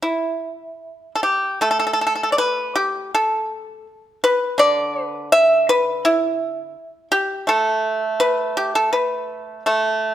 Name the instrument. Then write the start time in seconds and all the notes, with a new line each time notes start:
pipa
0.02 E4
1.15 A4
1.23 G4
1.61 A3 A4
1.71 A4
1.79 A4
1.87 A4
1.93 A4
2.01 A4
2.07 A4
2.15 A4
2.23 A4
2.32 D5
2.38 B4
2.76 G4
3.15 A4
4.24 B4
4.58 D3 D5
5.05 B4
5.32 E5
5.69 B4
6.05 E4
7.12 G4
7.47 A3 A4
8.20 B4
8.57 G4
8.75 A4
8.93 B4
9.66 A3 A4